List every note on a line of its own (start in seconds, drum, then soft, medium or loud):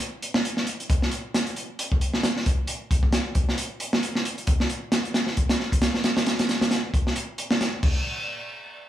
0.22 closed hi-hat medium
0.34 snare loud
0.45 closed hi-hat medium
0.57 snare medium
0.67 closed hi-hat medium
0.80 closed hi-hat soft
0.90 kick loud
0.90 closed hi-hat medium
1.02 snare soft
1.11 closed hi-hat medium
1.34 snare loud
1.34 closed hi-hat medium
1.47 closed hi-hat soft
1.56 closed hi-hat medium
1.79 closed hi-hat medium
1.92 kick loud
2.01 closed hi-hat medium
2.14 snare medium
2.23 snare loud
2.23 closed hi-hat medium
2.36 snare medium
2.46 kick loud
2.46 closed hi-hat medium
2.67 closed hi-hat medium
2.91 kick loud
2.91 closed hi-hat medium
3.03 kick medium
3.12 snare loud
3.12 closed hi-hat medium
3.35 kick loud
3.35 closed hi-hat medium
3.49 snare medium
3.58 closed hi-hat medium
3.80 closed hi-hat medium
3.93 snare loud
4.03 closed hi-hat medium
4.15 snare medium
4.25 closed hi-hat medium
4.38 closed hi-hat soft
4.47 kick loud
4.47 closed hi-hat medium
4.60 snare medium
4.70 closed hi-hat medium
4.92 snare loud
4.92 closed hi-hat loud
5.05 closed hi-hat soft
5.14 snare loud
5.14 closed hi-hat medium
5.27 snare soft
5.37 kick medium
5.37 closed hi-hat medium
5.49 snare loud
5.49 closed hi-hat medium
5.60 snare soft
5.72 kick medium
5.72 closed hi-hat medium
5.82 snare loud
5.82 closed hi-hat medium
5.94 snare medium
6.04 snare loud
6.04 closed hi-hat medium
6.17 snare loud
6.17 closed hi-hat medium
6.26 snare loud
6.26 closed hi-hat medium
6.39 snare loud
6.39 closed hi-hat medium
6.49 snare loud
6.49 closed hi-hat medium
6.61 snare loud
6.61 closed hi-hat medium
6.71 snare loud
6.71 closed hi-hat medium
6.94 kick loud
6.94 closed hi-hat medium
7.07 snare medium
7.16 closed hi-hat medium
7.38 closed hi-hat medium
7.51 snare loud
7.61 snare loud
7.61 closed hi-hat medium
7.83 kick loud
7.83 crash loud